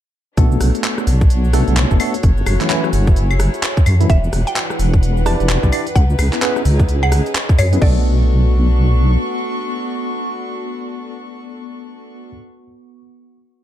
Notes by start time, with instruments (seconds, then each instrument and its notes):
0.37 wobble bass B1, tine electric piano A3 B3 D4 F#4 A4, ambient pad B3, violin section D4 F#4 A4 C#5, kick, closed hi-hat, cabasa
0.52 cabasa
0.61 wobble bass B1, cross-stick, open hi-hat, cabasa
0.68 ambient pad F#4
0.75 closed hi-hat, cabasa
0.84 clap, closed hi-hat, cabasa
0.98 cross-stick, cabasa
1.07 wobble bass B1, open hi-hat, cabasa
1.21 ambient pad C#5, kick, cabasa
1.30 closed hi-hat, cabasa
1.44 cabasa
1.53 tine electric piano A3 B3 D4 F#4 A4, cross-stick, open hi-hat, cabasa
1.68 wobble bass B1, closed hi-hat, cabasa
1.77 clap, closed hi-hat, cabasa
1.91 wobble bass F#1, tine electric piano A3 B3 D4 F#4 A4, kick, cabasa
2.00 tine electric piano A3 B3 D4 F#4 A4, open hi-hat, cabasa, claves
2.14 closed hi-hat, cabasa
2.23 wobble bass F#1, violin section E4 G#4, kick, closed hi-hat, cabasa
2.37 cabasa
2.46 wobble bass F#1, cross-stick, open hi-hat, cabasa, claves
2.52 ambient pad G#5
2.61 tine electric piano E3 F#3 A3 C#4 E4, clap, closed hi-hat, cabasa
2.70 tine electric piano E3 F#3 A3 C#4 E4, clap, closed hi-hat, cabasa
2.84 cross-stick, cabasa
2.93 wobble bass F#1, open hi-hat, cabasa
3.07 kick, cabasa
3.16 closed hi-hat, cabasa
3.31 cabasa, claves
3.40 cross-stick, open hi-hat, cabasa
3.54 closed hi-hat, cabasa
3.63 clap, closed hi-hat, cabasa
3.77 kick, cabasa
3.86 wobble bass F#2, open hi-hat, cabasa, claves
4.00 tine electric piano E3 F#3 A3 C#4 E4, closed hi-hat, cabasa
4.09 wobble bass E1, ambient pad E3, violin section G3 D4 B4 F#5, synth pluck E5, kick, closed hi-hat, cabasa
4.24 ambient pad B4, cabasa
4.33 wobble bass E1, cross-stick, open hi-hat, cabasa
4.47 ambient pad F#5, synth pluck G5, closed hi-hat, cabasa
4.56 clap, closed hi-hat, cabasa
4.70 cross-stick, cabasa
4.79 wobble bass E1, open hi-hat, cabasa
4.94 kick, cabasa
5.03 closed hi-hat, cabasa
5.17 cabasa
5.26 tine electric piano D4 E4 G4 B4 D5, synth pluck A5, cross-stick, open hi-hat, cabasa
5.40 wobble bass E1, closed hi-hat, cabasa
5.49 clap, closed hi-hat, cabasa
5.63 wobble bass B1, tine electric piano D4 E4 G4 B4 D5, kick, cabasa
5.72 tine electric piano D4 E4 G4 B4 D5, open hi-hat, cabasa, claves
5.87 closed hi-hat, cabasa
5.96 wobble bass C#2, ambient pad C#4, violin section D#4 E4 G#4, synth pluck F#5, kick, closed hi-hat, cabasa
6.10 cabasa
6.19 wobble bass C#2, cross-stick, open hi-hat, cabasa, claves
6.31 tine electric piano B3 C#4 E4 G#4 B4, ambient pad G#4, clap, closed hi-hat, cabasa
6.42 tine electric piano B3 C#4 E4 G#4 B4, clap, closed hi-hat, cabasa
6.56 cross-stick, cabasa
6.65 wobble bass C#2, open hi-hat, cabasa
6.80 ambient pad D#5, kick, cabasa
6.89 closed hi-hat, cabasa
7.03 synth pluck F#5, cabasa, claves
7.12 cross-stick, open hi-hat, cabasa
7.26 closed hi-hat, cabasa
7.35 clap, closed hi-hat, cabasa
7.49 kick, cabasa
7.58 wobble bass F#2, synth pluck C#5, open hi-hat, cabasa, claves
7.73 tine electric piano B3 C#4 E4 G#4 B4, closed hi-hat, cabasa
7.82 wobble bass B1, tine electric piano A3 B3 D4 F#4 A4, ambient pad B3, violin section D4 F#4 A4 C#6, synth pluck D5, kick, crash
7.90 ambient pad F#4
7.98 ambient pad C#6